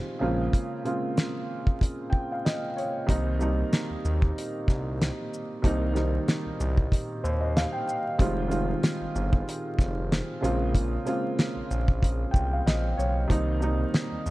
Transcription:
Already playing: D#3 G3 G#3 C4 F4
0.19 A#1 C#3 G#3 A#3 C4 F4
0.53 kick, closed hi-hat
0.83 C#3 G#3 A#3 C4 F4, closed hi-hat
1.17 snare, closed hi-hat
1.67 kick
1.81 kick, closed hi-hat
2.10 G5, kick
2.32 F5
2.45 D#5, snare, closed hi-hat
2.76 C#5, closed hi-hat
3.06 C2 D#3 G3 A#3 C4 D#4, kick, closed hi-hat
3.39 D#3 G3 A#3 C4 D#4, shaker
3.73 snare, closed hi-hat
3.90 D#2
4.05 D#2, shaker
4.22 kick
4.38 closed hi-hat
4.68 C2, kick, snare, shaker
5.02 snare, closed hi-hat
5.34 shaker
5.62 C2 D#3 G3 A#3 C4 D#4, kick, closed hi-hat
5.93 D#3 G3 A#3 C4 D#4, snare, shaker
6.28 snare, closed hi-hat
6.46 C2
6.60 C2, shaker
6.77 kick
6.92 kick, closed hi-hat
7.24 D#2 C5, shaker
7.41 D#5
7.57 F5, snare, closed hi-hat
7.73 G5
7.87 G5, shaker
8.18 F1 D#3 G3 G#3 C4 F4, kick, closed hi-hat
8.48 D#3 G3 G#3 C4 F4, closed hi-hat, shaker
8.83 snare, closed hi-hat
9.01 G1
9.15 G1, shaker
9.33 kick
9.49 closed hi-hat
9.79 F1, kick, snare, shaker
10.12 snare, closed hi-hat
10.41 A#1 C#3 G#3 A#3 C4 F4, closed hi-hat, shaker
10.75 kick, closed hi-hat
11.04 C#3 G#3 A#3 C4 F4, closed hi-hat, shaker
11.39 snare, closed hi-hat
11.56 A#1
11.71 A#1, shaker
11.88 kick
12.03 kick, closed hi-hat
12.31 C2 G5, kick
12.36 shaker
12.53 F5
12.66 A#1 D#5, snare, closed hi-hat
12.97 B1 C#5, shaker
13.28 C2 D#3 G3 A#3 C4 D#4, kick, closed hi-hat
13.60 D#3 G3 A#3 C4 D#4, shaker
13.94 snare, closed hi-hat
14.11 D#2
14.26 D#2, shaker

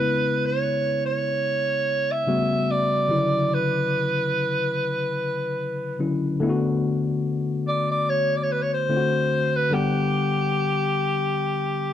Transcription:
Already playing: C#3 G#3 B3 E4 B4
0.46 C#5
1.06 C#5
2.12 E5
2.27 C#3 G3 A3 B3 F#4
2.71 D5
3.08 C#3 D3 F#3 E4
3.54 B4
5.99 D3 F#3 C#4 E4
6.40 D3 A3 B3 E4
6.49 F#4
7.67 D5
7.91 D5
8.09 C#5
8.36 D5
8.43 C#5
8.52 B4
8.62 C#5
8.74 C5
8.89 D3 A3 C4 F4
8.97 F#4
9.56 B4
9.70 D3 G3 B3 G4 F#5

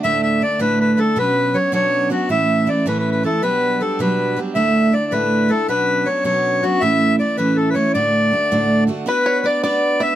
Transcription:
0.03 D2 A2 D3 A3 D4 E4 E5
0.23 E5
0.41 D3 A3 D4 E4 D5
0.59 D2 A2 D3 A3 D4 E4 B4
0.81 B4
0.97 D3 A3 D4 E4 A4
1.16 B2 F#3 B3 C#4 D4 B4
1.54 F#3 B3 C#4 D4 C#5
1.72 B2 F#3 B3 C#4 D4 C#5
2.10 F#3 B3 C#4 D4 F#4
2.29 A2 E3 A3 C#4 E4 E5
2.67 E3 A3 C#4 E4 D5
2.86 A2 E3 A3 C#4 E4 B4
2.99 B4
3.12 B4
3.23 E3 A3 C#4 E4 A4
3.43 B2 F#3 G3 B3 D4 B4
3.80 F#3 G3 B3 D4 A4
3.99 B2 F#3 G3 B3 D4 B4
4.37 F#3 G3 B3 D4
4.55 D2 A2 D3 A3 D4 E4 E5
4.92 D3 D4 E4 D5
5.11 D2 A2 D3 A3 D4 E4 B4
5.48 D3 A3 D4 E4 A4
5.68 B2 F#3 B3 C#4 D4 B4
6.06 F#3 B3 C#4 D4 C#5
6.24 B2 F#3 B3 C#4 D4 C#5
6.63 F#3 B3 C#4 D4 F#4
6.80 A2 E3 A3 C#4 E4 E5
7.19 E3 A3 C#4 E4 D5
7.37 A2 E3 A3 C#4 E4 B4
7.56 A4
7.70 B4
7.74 E3 A3 C#4 E4 C#5
7.94 D2 A2 D3 A3 D4 F#4 D5
8.31 D3 A3 D4 F#4
8.51 D2 A2 D3 A3 D4 F#4
8.87 D3 A3 D4 F#4
9.06 B3 D4 F#4 B4
9.26 C#5
9.44 B3 D4 F#4 B4 D5
9.63 B3 D4 F#4 B4 D5
10.00 B3 D4 F#4 B4 E5

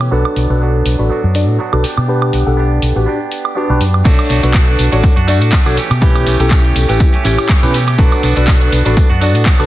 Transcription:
Already playing: E3 A3 C#4 G4
0.01 high woodblock
0.11 B1 F#3 B3 D4 F#4 A4 B4, tambourine
0.25 tambourine, high woodblock
0.36 B1, open hi-hat
0.49 B1 D4 F#4 A4 B4, tambourine
0.60 F#3 B3 D4 F#4, tambourine
0.86 B1, open hi-hat, tambourine
0.99 A1 D4 F#4 A4 B4
1.09 F#3 B3 D4 F#4, muted fingered electric bass stroke, tambourine
1.24 F#2
1.34 D4 F#4 A4 D5, open hi-hat, tambourine
1.48 A2
1.59 F#3 B3 D4 F#4, tambourine
1.73 B1 D4 F#4 A4 B4, high woodblock
1.83 B3 D4 G4, muted fingered electric bass stroke, open hi-hat, tambourine
1.97 B2, high woodblock
2.08 D4 G4 B4 F#5, tambourine
2.22 high woodblock
2.33 B1, open hi-hat, tambourine
2.46 B1 D4 G4 A4 F#5, tambourine
2.57 B3 D4 G4, tambourine
2.71 tambourine
2.82 B1, open hi-hat, tambourine
2.95 A1 D4 F#4 G4 B4, tambourine
3.06 B3 D4 G4, tambourine
3.31 open hi-hat, tambourine
3.45 high woodblock
3.55 B3 D4 F#4 G4 B4, tambourine
3.69 B1 D4 F#4 G4 B4, tambourine
3.81 F#2, open hi-hat, tambourine
3.94 high woodblock
4.05 B1 A3 D4 F#4 A4 C#5, kick, closed hi-hat, crash, tambourine
4.19 closed hi-hat, tambourine, high woodblock
4.29 B1 A3 D4 F#4, open hi-hat, tambourine
4.43 B1 D4 F#4 A4 B4, closed hi-hat, tambourine
4.54 A3 D4 F#4, kick, clap, closed hi-hat, tambourine
4.67 D4 F#4, closed hi-hat
4.79 B1, open hi-hat, tambourine
4.92 A1 D4 F#4 A4 C#5, closed hi-hat, tambourine
5.04 kick, closed hi-hat, tambourine
5.16 F#2 D4 F#4, closed hi-hat
5.27 A3 D4 F#4 A4 D5, open hi-hat, tambourine
5.41 A2 D4 F#4, closed hi-hat, tambourine
5.52 A3 D4 F#4, kick, clap, closed hi-hat, tambourine
5.66 B1 D4 F#4 A4 C#5, closed hi-hat, tambourine, high woodblock
5.76 E3 A3 C#4 G4, muted fingered electric bass stroke, open hi-hat, tambourine
5.90 B2 A3 C#4 G4, closed hi-hat, tambourine, high woodblock
6.01 E3 A3 C#4 E4 G4 B4, kick, closed hi-hat, tambourine
6.15 closed hi-hat, tambourine, high woodblock
6.25 B1 E3 A3 C#4 G4, open hi-hat, tambourine
6.39 B1 C#4 E4 G4 A4, closed hi-hat, tambourine
6.51 E3 A3 C#4, kick, clap, closed hi-hat, tambourine
6.64 A3 C#4 G4, closed hi-hat
6.75 B1, open hi-hat, tambourine
6.88 A1 A3 C#4 E4 G4 B4, closed hi-hat, tambourine
7.00 kick, closed hi-hat, tambourine
7.13 A3 C#4 G4, muted fingered electric bass stroke, closed hi-hat
7.24 A1 E3 A3 C#4 E4 G4 C#5, open hi-hat, tambourine
7.37 A3 C#4 G4, closed hi-hat, tambourine, high woodblock
7.49 E3 A3 C#4 G4, kick, clap, closed hi-hat, tambourine
7.62 B2 C#4 E4 G4 B4, closed hi-hat, tambourine
7.73 E3 A3 C#4 G4, open hi-hat, tambourine
7.87 A3 C#4 G4, closed hi-hat, tambourine, high woodblock
7.98 B1 F#3 B3 D4 F#4 A4 B4, kick, closed hi-hat, tambourine
8.12 closed hi-hat, tambourine, high woodblock
8.22 B1 F#3 B3 D4 F#4, open hi-hat, tambourine
8.36 B1 B3 D4 F#4 A4 B4, closed hi-hat, tambourine
8.47 F#3 D4 F#4, kick, clap, closed hi-hat, tambourine
8.60 B3 D4 F#4, closed hi-hat
8.72 B1, open hi-hat, tambourine
8.85 A1 B3 D4 F#4 A4 B4, closed hi-hat, tambourine
8.97 kick, closed hi-hat, tambourine
9.10 F#2 B3 D4 F#4, closed hi-hat
9.21 F#3 B3 D4 F#4 A4 D5, open hi-hat, tambourine
9.34 A2 B3 D4 F#4, closed hi-hat, tambourine
9.46 F#3 B3 D4 F#4, kick, clap, closed hi-hat, tambourine
9.59 B1 D4 F#4 A4 B4, closed hi-hat, tambourine, high woodblock

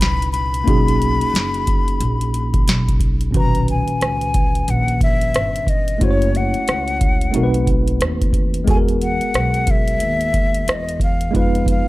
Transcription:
Already playing: A#2 C#4 D#4 F#4 B4
0.00 C2 B5, snare, closed hi-hat
0.22 closed hi-hat
0.32 B5, closed hi-hat
0.54 closed hi-hat
0.64 B1 A#3 C#4 D#4, kick, closed hi-hat
0.68 F#4 G#4
0.88 closed hi-hat
1.02 closed hi-hat
1.21 muted upright bass stroke, closed hi-hat
1.34 F#1, snare, closed hi-hat
1.54 closed hi-hat
1.67 kick, closed hi-hat
1.88 closed hi-hat
2.00 A#1, closed hi-hat
2.21 closed hi-hat
2.34 closed hi-hat
2.54 kick, closed hi-hat
2.67 B1, snare, closed hi-hat
2.88 kick, closed hi-hat
3.00 kick, closed hi-hat
3.21 closed hi-hat
3.31 B1 A#2 D#3 C#4, kick, closed hi-hat
3.35 F#4 B4 A#5
3.55 closed hi-hat
3.68 G#5, closed hi-hat
3.88 muted upright bass stroke, closed hi-hat
4.01 C#2, cross-stick, closed hi-hat
4.21 closed hi-hat
4.34 kick, closed hi-hat
4.55 closed hi-hat
4.68 A#1 F#5, closed hi-hat
4.88 closed hi-hat
5.01 E5, kick, closed hi-hat
5.21 closed hi-hat
5.34 G1, cross-stick, closed hi-hat
5.56 closed hi-hat
5.67 D#5, kick, closed hi-hat
5.88 closed hi-hat
5.98 F#1 A3 C#4 E4, kick, closed hi-hat
6.02 F#4 C5 C#5
6.11 C#5
6.22 closed hi-hat
6.35 F#5, closed hi-hat
6.54 muted upright bass stroke, closed hi-hat
6.68 C#2, cross-stick, closed hi-hat
6.88 closed hi-hat
7.01 kick, closed hi-hat
7.21 closed hi-hat
7.31 B1 A3 C4 D#4, closed hi-hat
7.36 F#4 A#4
7.43 B4
7.54 closed hi-hat
7.67 kick, closed hi-hat
7.88 closed hi-hat
8.01 D#2, cross-stick, closed hi-hat
8.22 kick, closed hi-hat
8.33 kick, closed hi-hat
8.54 closed hi-hat
8.64 E2 G#3 B3 G#4, kick, closed hi-hat
8.69 F#4 A4 G#5
8.76 A#4
8.89 closed hi-hat
9.02 F#5, closed hi-hat
9.21 muted upright bass stroke, closed hi-hat
9.34 B1, cross-stick, closed hi-hat
9.54 closed hi-hat
9.67 E5, kick, closed hi-hat
9.88 closed hi-hat
10.00 D#2, closed hi-hat
10.21 closed hi-hat
10.34 kick, closed hi-hat
10.54 closed hi-hat
10.68 E2 D#5, cross-stick, closed hi-hat
10.89 closed hi-hat
11.00 F5, kick, closed hi-hat
11.21 closed hi-hat
11.31 G#3 B3 D#4, kick
11.35 F2 F4 B4 F5, closed hi-hat
11.55 closed hi-hat
11.66 kick, closed hi-hat
11.70 F5

